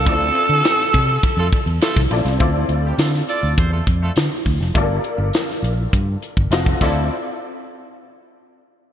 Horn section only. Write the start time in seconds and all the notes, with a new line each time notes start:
1.38 A3 F4 A4
1.82 A3 F4 A4
2.85 C4 E4 G4
3.00 A3 F4 A4
3.28 F4 A4 D5
3.58 F4 A4 C5
3.73 A3 F4 A4
4.03 A3 F4 A4
6.81 F3 E4 A4